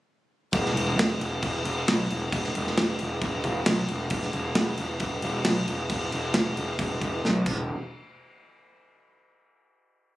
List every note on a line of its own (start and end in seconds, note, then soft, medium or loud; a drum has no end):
0.53 0.69 E1 loud
0.53 kick loud
0.53 crash medium
0.66 snare soft
0.74 0.90 E1 medium
0.74 crash medium
0.96 1.12 E1 loud
0.96 snare loud
0.96 crash medium
1.19 1.35 E1 medium
1.19 crash medium
1.43 1.58 E1 medium
1.43 kick loud
1.43 crash medium
1.64 1.80 E1 medium
1.64 crash medium
1.88 2.03 B1 medium
1.88 snare loud
1.88 crash medium
2.10 2.26 E1 medium
2.10 crash medium
2.32 2.48 E1 medium
2.32 kick loud
2.32 crash medium
2.44 snare soft
2.55 2.71 E1 medium
2.55 crash medium
2.67 snare soft
2.77 2.94 E1 medium
2.77 snare loud
2.77 crash medium
2.99 3.16 E1 medium
2.99 crash medium
3.22 3.37 E1 medium
3.22 kick loud
3.22 crash medium
3.44 3.59 E1 loud
3.44 kick medium
3.44 crash medium
3.66 3.82 B1 loud
3.66 snare loud
3.66 crash medium
3.88 4.05 E1 medium
3.88 crash medium
4.10 4.26 E1 medium
4.10 kick loud
4.10 crash medium
4.22 snare soft
4.33 4.49 E1 medium
4.33 crash medium
4.55 4.71 E1 loud
4.55 snare loud
4.55 crash medium
4.78 4.94 E1 medium
4.78 crash medium
5.00 5.16 E1 medium
5.00 kick loud
5.00 crash medium
5.22 5.39 E1 loud
5.22 crash medium
5.45 5.61 B1 medium
5.45 snare loud
5.45 crash medium
5.67 5.83 E1 medium
5.67 crash medium
5.90 6.06 E1 medium
5.90 kick loud
5.90 crash medium
6.12 6.28 E1 medium
6.12 crash medium
6.34 6.51 E1 loud
6.34 snare loud
6.34 crash medium
6.57 6.73 E1 medium
6.57 crash medium
6.79 6.95 E1 medium
6.79 kick loud
6.79 crash medium
7.01 7.17 E1 medium
7.01 kick medium
7.01 crash medium
7.25 7.41 B1 loud
7.25 snare medium
7.46 7.68 E1 medium
7.46 kick loud
7.46 crash medium